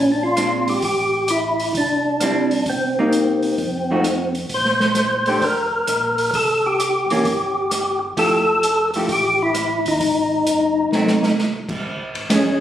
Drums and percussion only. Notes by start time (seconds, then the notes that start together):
0.37 cross-stick, closed hi-hat
0.68 open hi-hat
0.82 kick, open hi-hat
1.28 closed hi-hat
1.60 open hi-hat
1.75 kick, open hi-hat
2.20 cross-stick, closed hi-hat
2.51 open hi-hat
2.66 kick, open hi-hat
3.13 closed hi-hat
3.43 open hi-hat
3.58 kick, open hi-hat
4.04 cross-stick, closed hi-hat
4.35 open hi-hat
4.49 kick, open hi-hat
4.65 snare
4.80 snare
4.95 snare, closed hi-hat
5.26 open hi-hat
5.41 kick, open hi-hat
5.87 cross-stick, closed hi-hat
6.18 open hi-hat
6.33 kick, open hi-hat
6.80 closed hi-hat
7.10 open hi-hat
7.25 kick, open hi-hat
7.71 cross-stick, closed hi-hat
8.17 kick, open hi-hat
8.63 closed hi-hat
8.94 open hi-hat
9.09 kick, open hi-hat
9.54 cross-stick, closed hi-hat
9.86 open hi-hat
10.00 kick, open hi-hat
10.47 closed hi-hat
10.92 snare
11.07 snare
11.23 snare
11.38 snare
11.69 kick, crash
11.84 kick
12.15 ride
12.29 kick, snare, hi-hat pedal, ride